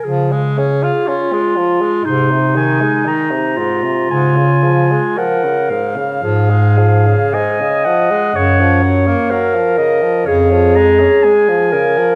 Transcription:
<<
  \new Staff \with { instrumentName = "Clarinet" } { \time 4/4 \key des \major \tempo 4 = 60 r2 c'''8 aes''8 bes''4 | aes''4 ges''8 f''4. aes''8 ges''8~ | ges''8 r8 f''8 ees''8 des''8 bes''8 aes''4 | }
  \new Staff \with { instrumentName = "Clarinet" } { \time 4/4 \key des \major aes'4 f'4 ees'4. f'8~ | f'4 bes'8 r8 aes'4 ees''4 | des''4 bes'4 aes'4. bes'8 | }
  \new Staff \with { instrumentName = "Tenor saxophone" } { \clef bass \time 4/4 \key des \major f16 aes16 des'16 f'16 des'16 aes16 f16 aes16 aes,16 c16 ees16 aes16 ees16 c16 aes,16 c16 | aes,16 des16 f16 aes16 f16 des16 aes,16 des16 f16 aes16 f16 des16 aes,16 des16 f16 aes16 | des16 f16 ges16 bes16 ges16 f16 des16 f16 des16 f16 aes16 des'16 aes16 f16 des16 f16 | }
  \new Staff \with { instrumentName = "Bass clarinet" } { \clef bass \time 4/4 \key des \major des4 r4 c4 r4 | des4 r4 aes,4 r4 | ges,4 r4 f,4 r4 | }
>>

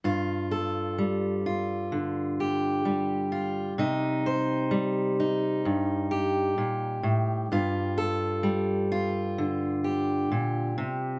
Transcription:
\new Staff \with { instrumentName = "Steel-string acoustic guitar" } { \clef bass \time 4/4 \key g \minor \tempo 4 = 64 << { f'8 a'4 f'4 g'4 f'8 | ees'8 c''4 ees'4 g'4. | f'8 a'4 f'4 g'4. | } \\ { g,4 g4 d4 g4 | c4 g4 g,4 bes,8 a,8 | g,4 g4 d4 bes,8 c8 | } >> }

